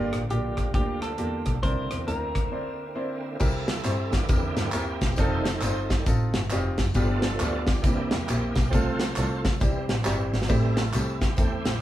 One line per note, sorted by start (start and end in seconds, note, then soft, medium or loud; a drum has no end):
0.00 0.53 G2 medium
0.00 1.60 D3 medium
0.00 1.59 G3 medium
0.00 0.17 A#3 loud
0.00 1.59 A#3 medium
0.00 0.16 D4 loud
0.00 0.16 F4 medium
0.00 1.60 F4 medium
0.00 0.16 G4 loud
0.13 0.28 A1 medium
0.13 cross-stick loud
0.13 closed hi-hat medium
0.30 0.68 A#1 medium
0.30 0.61 A#3 medium
0.30 0.61 D4 medium
0.30 0.61 F4 medium
0.30 0.61 G4 medium
0.30 0.74 G4 medium
0.30 closed hi-hat medium
0.57 kick medium
0.57 cross-stick medium
0.57 closed hi-hat medium
0.74 1.12 D2 medium
0.74 1.05 A#3 medium
0.74 1.05 D4 medium
0.74 1.05 F4 medium
0.74 1.05 G4 medium
0.74 1.02 G4 medium
0.74 kick loud
0.74 closed hi-hat medium
1.02 1.62 A4 medium
1.02 cross-stick medium
1.02 closed hi-hat medium
1.18 1.42 E2 medium
1.18 1.49 A#3 medium
1.18 1.49 D4 medium
1.18 1.49 F4 medium
1.18 1.49 G4 medium
1.18 closed hi-hat medium
1.46 1.60 B1 medium
1.46 kick medium
1.46 cross-stick medium
1.46 closed hi-hat medium
1.63 1.86 C2 loud
1.63 2.31 C3 soft
1.63 3.37 D3 medium
1.63 3.37 A#3 soft
1.63 1.94 C4 medium
1.63 3.37 C4 medium
1.63 1.94 D4 medium
1.63 1.94 E4 medium
1.63 3.37 E4 medium
1.63 1.94 A#4 medium
1.63 2.04 C5 medium
1.63 kick medium
1.63 closed hi-hat medium
1.91 2.05 E2 medium
1.91 cross-stick loud
1.91 closed hi-hat medium
2.07 2.46 D2 medium
2.07 2.38 C4 medium
2.07 2.38 D4 medium
2.07 2.38 E4 medium
2.07 2.38 A#4 medium
2.07 3.20 A#4 medium
2.07 closed hi-hat medium
2.35 kick medium
2.35 cross-stick medium
2.35 closed hi-hat medium
2.51 2.82 C4 medium
2.51 2.82 D4 medium
2.51 2.82 E4 medium
2.51 2.83 C5 medium
2.95 3.27 C4 medium
2.95 3.26 D4 medium
2.95 3.27 E4 medium
2.95 3.26 C5 medium
3.40 3.78 C2 loud
3.40 4.08 C3 medium
3.40 3.71 C4 medium
3.40 3.71 E4 medium
3.40 4.26 E4 medium
3.40 3.71 G4 medium
3.40 4.14 A4 medium
3.40 3.71 A#4 medium
3.40 kick loud
3.40 crash medium
3.40 tambourine medium
3.68 snare loud
3.68 closed hi-hat medium
3.68 tambourine medium
3.84 4.23 G2 medium
3.84 4.15 C4 medium
3.84 4.16 E4 medium
3.84 4.16 G4 medium
3.84 4.16 C5 medium
3.84 clap medium
3.84 closed hi-hat medium
3.84 tambourine medium
4.11 4.70 D3 medium
4.11 4.70 E3 medium
4.11 4.28 A#3 medium
4.11 4.25 G4 medium
4.11 kick medium
4.11 snare loud
4.11 closed hi-hat medium
4.11 tambourine medium
4.26 4.52 E2 loud
4.26 5.14 A#3 medium
4.26 4.60 C4 medium
4.26 5.13 E4 medium
4.26 4.60 E4 medium
4.26 5.19 G4 medium
4.26 4.60 G4 medium
4.26 4.60 A#4 medium
4.26 kick loud
4.26 closed hi-hat medium
4.26 tambourine medium
4.56 4.70 G2 medium
4.56 snare medium
4.56 closed hi-hat medium
4.56 tambourine soft
4.72 4.97 D#2 medium
4.72 5.05 C4 medium
4.72 5.04 E4 medium
4.72 5.05 G4 medium
4.72 5.05 A#4 medium
4.72 clap medium
4.72 closed hi-hat medium
4.72 tambourine medium
5.01 5.16 E1 medium
5.01 kick medium
5.01 snare medium
5.01 closed hi-hat medium
5.01 tambourine medium
5.16 5.61 F1 loud
5.16 5.50 D#3 medium
5.16 5.50 G3 soft
5.16 5.50 A3 medium
5.16 5.49 C4 medium
5.16 6.03 D#4 medium
5.16 5.49 D#4 medium
5.16 5.49 F4 medium
5.16 6.03 A4 medium
5.16 5.49 A4 loud
5.16 5.84 C5 loud
5.16 kick loud
5.16 closed hi-hat medium
5.16 tambourine medium
5.45 snare loud
5.45 closed hi-hat medium
5.45 tambourine medium
5.61 6.00 G1 medium
5.61 5.94 C4 medium
5.61 5.94 D#4 medium
5.61 5.94 F4 medium
5.61 5.94 C5 medium
5.61 clap medium
5.61 closed hi-hat medium
5.61 tambourine medium
5.90 6.05 D#3 soft
5.90 6.05 G3 soft
5.90 6.06 A3 medium
5.90 kick medium
5.90 snare medium
5.90 closed hi-hat medium
5.90 tambourine medium
6.06 6.30 A1 medium
6.06 6.38 C4 medium
6.06 6.38 D#4 medium
6.06 6.38 F4 medium
6.06 6.38 A4 medium
6.06 kick loud
6.06 closed hi-hat medium
6.06 tambourine medium
6.34 6.48 G1 medium
6.34 snare loud
6.34 closed hi-hat medium
6.34 tambourine soft
6.50 6.74 F1 medium
6.50 6.82 C4 medium
6.50 6.82 D#4 medium
6.50 6.82 F4 medium
6.50 6.82 G4 medium
6.50 clap medium
6.50 closed hi-hat medium
6.50 tambourine medium
6.78 6.93 F#1 medium
6.78 kick medium
6.78 snare medium
6.78 closed hi-hat medium
6.78 tambourine medium
6.94 7.33 G1 loud
6.94 7.63 G2 medium
6.94 7.64 F3 medium
6.94 7.64 A3 soft
6.94 7.26 B3 medium
6.94 7.64 B3 medium
6.94 7.26 D4 medium
6.94 7.81 D4 medium
6.94 7.26 F4 medium
6.94 7.81 F4 medium
6.94 7.26 G4 loud
6.94 7.64 A4 medium
6.94 kick loud
6.94 closed hi-hat medium
6.94 tambourine medium
7.22 snare loud
7.22 closed hi-hat medium
7.22 tambourine medium
7.40 7.78 D2 loud
7.40 7.71 B3 medium
7.40 7.71 D4 medium
7.40 7.71 F4 medium
7.40 7.71 G4 medium
7.40 clap medium
7.40 closed hi-hat medium
7.40 tambourine medium
7.67 7.83 G4 medium
7.67 kick loud
7.67 snare loud
7.67 closed hi-hat medium
7.67 tambourine medium
7.82 8.07 C2 loud
7.82 8.15 E3 medium
7.82 8.68 A#3 medium
7.82 8.16 D4 medium
7.82 8.68 E4 medium
7.82 8.16 E4 medium
7.82 8.75 G4 medium
7.82 8.16 G4 medium
7.82 kick loud
7.82 closed hi-hat medium
7.82 tambourine medium
7.86 8.53 C3 medium
7.86 8.16 A#3 medium
7.86 8.16 C4 medium
8.11 8.26 E2 medium
8.11 snare loud
8.11 closed hi-hat medium
8.11 tambourine soft
8.29 8.52 A#1 medium
8.29 8.60 A#3 medium
8.29 8.60 C4 medium
8.29 8.60 E4 medium
8.29 8.60 G4 medium
8.29 clap medium
8.29 closed hi-hat medium
8.29 tambourine medium
8.55 8.70 B1 medium
8.55 kick medium
8.55 snare medium
8.55 closed hi-hat medium
8.55 tambourine medium
8.70 9.10 C2 loud
8.70 9.04 F3 soft
8.70 9.04 A3 soft
8.70 9.04 A3 medium
8.70 9.04 C4 medium
8.70 9.57 F4 medium
8.70 9.57 A4 medium
8.70 9.40 C5 medium
8.70 kick loud
8.70 closed hi-hat medium
8.70 tambourine medium
8.74 9.41 C3 medium
8.74 9.04 F4 medium
8.74 9.04 A4 medium
9.00 snare loud
9.00 closed hi-hat medium
9.00 tambourine medium
9.16 9.55 C2 loud
9.16 9.48 A3 medium
9.16 9.48 C4 medium
9.16 9.48 F4 medium
9.16 9.48 A4 medium
9.16 clap medium
9.16 closed hi-hat medium
9.16 tambourine medium
9.44 kick loud
9.44 snare loud
9.44 closed hi-hat medium
9.44 tambourine medium
9.60 9.85 C2 medium
9.60 10.29 C3 medium
9.60 10.46 E3 medium
9.60 9.92 G3 medium
9.60 10.46 G3 medium
9.60 9.92 C4 medium
9.60 10.46 C4 medium
9.60 9.92 E4 medium
9.60 9.92 G4 medium
9.60 kick loud
9.60 closed hi-hat medium
9.60 tambourine medium
9.88 10.03 A1 medium
9.88 snare loud
9.88 closed hi-hat medium
9.88 tambourine medium
10.05 10.29 G1 medium
10.05 10.36 G3 medium
10.05 10.36 C4 medium
10.05 10.36 E4 medium
10.05 10.36 G4 medium
10.05 snare medium
10.05 clap loud
10.05 tambourine medium
10.32 10.47 G#1 medium
10.32 snare medium
10.32 tambourine soft
10.42 snare medium
10.48 10.88 A1 medium
10.48 11.17 A2 medium
10.48 10.81 E3 soft
10.48 10.82 G3 soft
10.48 10.80 A3 medium
10.48 10.82 C4 medium
10.48 10.80 C4 medium
10.48 11.34 E4 medium
10.48 10.80 E4 medium
10.48 10.80 G4 medium
10.48 11.18 A4 medium
10.48 kick loud
10.48 tambourine medium
10.48 splash medium
10.77 snare loud
10.77 closed hi-hat medium
10.77 tambourine medium
10.93 11.31 C2 loud
10.93 11.25 A3 medium
10.93 11.25 C4 medium
10.93 11.25 E4 medium
10.93 11.25 G4 medium
10.93 clap medium
10.93 closed hi-hat medium
10.93 tambourine medium
11.21 11.36 G4 medium
11.21 kick medium
11.21 snare medium
11.21 closed hi-hat medium
11.21 tambourine medium
11.36 11.61 E2 medium
11.36 11.70 A3 medium
11.36 11.81 C4 medium
11.36 11.69 C4 medium
11.36 11.81 E4 medium
11.36 11.70 E4 medium
11.36 11.81 G4 medium
11.36 11.69 A4 medium
11.36 kick loud
11.36 closed hi-hat medium
11.36 tambourine medium
11.64 11.79 A1 medium
11.64 snare loud
11.64 closed hi-hat medium
11.64 tambourine medium